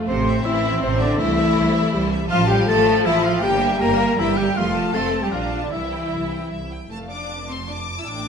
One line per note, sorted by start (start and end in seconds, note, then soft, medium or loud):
0.00 0.43 A3 medium
0.07 0.40 A1 medium
0.07 0.42 C3 medium
0.07 0.41 C4 medium
0.07 0.42 C4 medium
0.07 0.42 C5 medium
0.07 0.25 C5 medium
0.27 0.45 E5 medium
0.43 0.77 A1 medium
0.43 0.81 E3 medium
0.43 1.17 C4 medium
0.43 0.81 E4 medium
0.43 0.82 E4 medium
0.43 0.63 C5 medium
0.43 0.81 E5 medium
0.63 0.81 E5 medium
0.80 1.15 A1 medium
0.80 1.00 C3 medium
0.80 0.99 C4 medium
0.80 1.00 C4 medium
0.80 0.98 C5 medium
0.80 1.00 C5 medium
0.99 1.19 D3 medium
0.99 1.18 D4 medium
0.99 1.19 D4 medium
0.99 1.06 D5 medium
0.99 1.19 D5 medium
0.99 1.19 E5 medium
1.18 1.52 C2 medium
1.18 2.12 E3 medium
1.18 1.93 A3 medium
1.18 2.09 E4 loud
1.18 2.12 E4 medium
1.18 1.36 C5 medium
1.18 2.10 E5 medium
1.38 1.56 E5 medium
1.56 1.89 C2 medium
1.56 1.75 C5 medium
1.76 1.94 E5 medium
1.92 2.26 C2 medium
1.92 2.30 G3 medium
1.92 2.11 C5 medium
2.12 2.30 E5 medium
2.30 2.64 A1 medium
2.30 3.41 F3 loud
2.30 2.48 F3 medium
2.30 2.47 F4 loud
2.30 2.47 F4 medium
2.30 2.37 F5 medium
2.30 2.39 F5 medium
2.30 2.47 A5 medium
2.48 2.67 G3 medium
2.48 2.67 G4 medium
2.48 2.67 G4 loud
2.48 2.68 F5 medium
2.48 2.67 G5 medium
2.48 2.68 G5 medium
2.66 3.01 A1 medium
2.66 3.05 A3 medium
2.66 3.04 A4 medium
2.66 3.04 A4 loud
2.66 3.05 A5 medium
2.66 3.07 A5 loud
2.66 2.87 A5 medium
2.87 3.05 F5 medium
3.05 3.39 A1 medium
3.05 3.24 E3 medium
3.05 3.24 E4 loud
3.05 3.24 E5 medium
3.05 3.23 A5 medium
3.23 3.32 F3 medium
3.23 3.42 F4 medium
3.23 3.43 F4 medium
3.23 3.42 F5 medium
3.23 3.45 F5 medium
3.23 3.43 F5 medium
3.42 3.77 G1 medium
3.42 3.80 G3 medium
3.42 3.81 A#3 medium
3.42 3.80 G4 medium
3.42 3.81 G4 loud
3.42 3.60 G5 medium
3.42 3.80 G5 medium
3.42 3.81 G5 medium
3.62 3.81 E5 medium
3.80 4.14 G1 medium
3.80 4.17 G3 medium
3.80 4.18 A#3 medium
3.80 4.18 A#4 loud
3.80 4.19 A#4 medium
3.80 4.00 G5 medium
3.80 4.18 A#5 medium
4.00 4.19 E5 medium
4.18 4.52 G1 medium
4.18 4.37 E3 medium
4.18 4.55 G3 medium
4.18 4.37 E4 medium
4.18 4.38 E4 medium
4.18 4.37 E5 medium
4.18 4.39 E5 medium
4.18 4.36 G5 medium
4.37 4.45 G3 medium
4.37 4.56 G4 medium
4.37 4.46 G4 medium
4.37 4.56 E5 medium
4.37 4.58 G5 medium
4.37 4.56 G5 medium
4.56 4.89 F1 medium
4.56 4.93 F3 medium
4.56 4.94 A3 medium
4.56 4.94 F4 medium
4.56 4.93 F4 medium
4.56 4.94 F5 medium
4.56 4.96 F5 medium
4.56 4.74 C6 medium
4.75 4.94 A5 medium
4.93 5.28 F1 medium
4.93 5.23 A3 medium
4.93 5.32 C4 medium
4.93 5.21 A4 medium
4.93 5.23 A4 medium
4.93 5.25 A5 medium
4.93 5.23 A5 medium
4.93 5.12 C6 medium
5.12 5.32 A5 soft
5.22 5.33 G3 medium
5.22 5.32 G4 soft
5.22 5.32 G4 medium
5.22 5.32 G5 medium
5.22 5.33 G5 medium
5.31 5.67 A#1 medium
5.31 5.62 F3 medium
5.31 5.72 D4 medium
5.31 5.62 F4 medium
5.31 5.61 F5 medium
5.31 5.62 F5 medium
5.31 5.50 A#5 soft
5.51 5.71 A5 soft
5.62 5.72 D3 soft
5.62 5.67 D4 soft
5.62 5.68 D4 medium
5.62 5.71 D5 medium
5.62 5.72 D5 soft
5.71 6.07 C2 medium
5.71 6.52 E3 medium
5.71 6.50 E4 medium
5.71 6.69 E4 medium
5.71 6.50 E4 medium
5.71 6.51 E5 medium
5.71 5.90 E5 soft
5.71 6.50 E5 medium
5.92 6.12 G5 soft
6.12 6.47 C2 soft
6.12 6.32 E5 soft
6.31 6.51 G5 soft
6.51 6.86 C2 soft
6.51 6.69 E5 soft
6.71 6.91 G5 soft
6.90 8.03 F1 soft
6.90 8.03 F2 soft
6.90 7.09 A3 soft
6.90 7.27 F5 soft
6.90 6.98 A5 medium
7.10 7.49 D4 soft
7.10 7.49 D6 medium
7.30 8.07 A5 soft
7.50 7.58 C4 soft
7.50 7.69 C6 soft
7.68 7.76 D4 soft
7.68 7.98 D6 medium
7.98 8.07 E4 soft
7.98 8.08 E6 medium
8.06 8.28 A1 soft
8.06 8.28 A2 soft
8.06 8.28 D4 medium
8.06 8.28 G5 soft
8.06 8.28 D6 medium